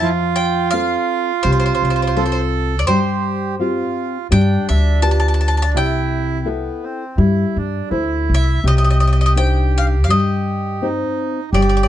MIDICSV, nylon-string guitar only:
0, 0, Header, 1, 2, 480
1, 0, Start_track
1, 0, Key_signature, 0, "major"
1, 0, Tempo, 715990
1, 13, Time_signature, 4, 2, 24, 8
1, 4333, Tempo, 723764
1, 5782, Key_signature, -3, "minor"
1, 7925, End_track
2, 0, Start_track
2, 0, Title_t, "Nylon-string guitar"
2, 0, Program_c, 0, 24
2, 11, Note_on_c, 0, 53, 58
2, 479, Note_off_c, 0, 53, 0
2, 489, Note_on_c, 0, 60, 49
2, 492, Note_on_c, 0, 65, 49
2, 495, Note_on_c, 0, 69, 48
2, 876, Note_off_c, 0, 60, 0
2, 877, Note_off_c, 0, 65, 0
2, 879, Note_off_c, 0, 69, 0
2, 968, Note_on_c, 0, 48, 63
2, 1437, Note_off_c, 0, 48, 0
2, 1453, Note_on_c, 0, 60, 56
2, 1453, Note_on_c, 0, 65, 51
2, 1457, Note_on_c, 0, 69, 56
2, 1837, Note_off_c, 0, 65, 0
2, 1838, Note_off_c, 0, 60, 0
2, 1840, Note_off_c, 0, 69, 0
2, 1933, Note_on_c, 0, 55, 75
2, 2400, Note_off_c, 0, 55, 0
2, 2409, Note_on_c, 0, 60, 54
2, 2413, Note_on_c, 0, 65, 52
2, 2416, Note_on_c, 0, 67, 53
2, 2794, Note_off_c, 0, 60, 0
2, 2796, Note_off_c, 0, 65, 0
2, 2798, Note_off_c, 0, 67, 0
2, 2887, Note_on_c, 0, 55, 63
2, 3353, Note_off_c, 0, 55, 0
2, 3366, Note_on_c, 0, 65, 44
2, 3367, Note_on_c, 0, 67, 54
2, 3372, Note_on_c, 0, 71, 53
2, 3752, Note_off_c, 0, 65, 0
2, 3753, Note_off_c, 0, 67, 0
2, 3756, Note_off_c, 0, 71, 0
2, 3852, Note_on_c, 0, 48, 69
2, 4317, Note_off_c, 0, 48, 0
2, 4325, Note_on_c, 0, 64, 48
2, 4331, Note_on_c, 0, 69, 49
2, 4334, Note_on_c, 0, 76, 50
2, 4711, Note_off_c, 0, 64, 0
2, 4713, Note_off_c, 0, 69, 0
2, 4716, Note_off_c, 0, 76, 0
2, 4806, Note_on_c, 0, 55, 59
2, 5280, Note_off_c, 0, 55, 0
2, 5292, Note_on_c, 0, 64, 52
2, 5297, Note_on_c, 0, 69, 43
2, 5297, Note_on_c, 0, 72, 52
2, 5682, Note_off_c, 0, 64, 0
2, 5684, Note_off_c, 0, 72, 0
2, 5685, Note_off_c, 0, 69, 0
2, 5777, Note_on_c, 0, 48, 69
2, 6245, Note_off_c, 0, 48, 0
2, 6253, Note_on_c, 0, 62, 52
2, 6258, Note_on_c, 0, 63, 43
2, 6262, Note_on_c, 0, 72, 63
2, 6640, Note_off_c, 0, 62, 0
2, 6643, Note_off_c, 0, 63, 0
2, 6644, Note_off_c, 0, 72, 0
2, 6736, Note_on_c, 0, 55, 55
2, 7202, Note_off_c, 0, 55, 0
2, 7221, Note_on_c, 0, 60, 47
2, 7227, Note_on_c, 0, 63, 46
2, 7227, Note_on_c, 0, 72, 61
2, 7600, Note_off_c, 0, 60, 0
2, 7603, Note_off_c, 0, 72, 0
2, 7604, Note_off_c, 0, 63, 0
2, 7694, Note_on_c, 0, 55, 63
2, 7925, Note_off_c, 0, 55, 0
2, 7925, End_track
0, 0, End_of_file